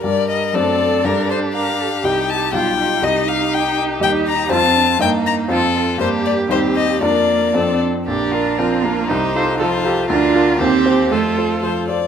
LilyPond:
<<
  \new Staff \with { instrumentName = "Violin" } { \time 2/4 \key g \minor \tempo 4 = 119 d''8 ees''8 d''4 | bes'8 c''8 f''4 | g''8 a''8 g''4 | ees''8 f''8 g''8 r8 |
\key bes \major g''8 bes''8 a''4 | g''8 bes''8 a'4 | c''8 d''8 c''8 ees''8 | d''4. r8 |
bes'2 | c''4 c''4 | bes'4 c''4 | c''4 c''8 d''8 | }
  \new Staff \with { instrumentName = "Violin" } { \time 2/4 \key g \minor bes'4 a'4 | g'2~ | g'2 | g'2~ |
\key bes \major g'4 f'4 | ees'4 f'4 | g'4 g'4 | bes'4 a'8 r8 |
g'8 f'8 f'4 | g'4 f'4 | f'4 g'4 | f'4. r8 | }
  \new Staff \with { instrumentName = "Cello" } { \time 2/4 \key g \minor r4 a'4~ | a'4 bes'8 a'8 | g'4 f'8 ees'8~ | ees'2 |
\key bes \major g'4 f'8 d'8 | ees'4 f'8 a'8 | g'2 | d'4. r8 |
d'4 c'8 bes8 | ees'4. r8 | d'4 c'4 | a4 r4 | }
  \new Staff \with { instrumentName = "Viola" } { \time 2/4 \key g \minor g4 c'4 | d'2 | ees'4 f'4 | ees'2~ |
\key bes \major ees'4 c'4 | bes4 c'4 | bes4 c'4 | bes4 c'8 r8 |
r4 f'4 | ees'8 c''8 a'8 g'8 | f'4 g'4 | a'4. r8 | }
  \new Staff \with { instrumentName = "Grand piano" } { \time 2/4 \key g \minor <g, g g' bes'>4 <fis, a d' c''>4 | <g, g g' d''>2 | <c, g g' ees''>4 <b,, g g' f''>4 | <c, g g' ees''>2 |
\key bes \major <ees, g g' ees''>4 <f, c' f' c''>4 | <g, bes ees' ees''>4 <f, c' f' c''>4 | <g, g d' bes'>4 <ees, g ees' c''>4 | <f, f d' bes'>4 <f, f c' a'>4 |
bes,,8 <d' bes'>8 <f d' bes'>8 <d' bes'>8 | c,8 <f' a'>8 <f f' a'>8 <f' a'>8 | d,8 <f' bes'>8 ees,8 <c' c''>8 | f,8 <f' c''>8 <f f' c''>8 <f' c''>8 | }
>>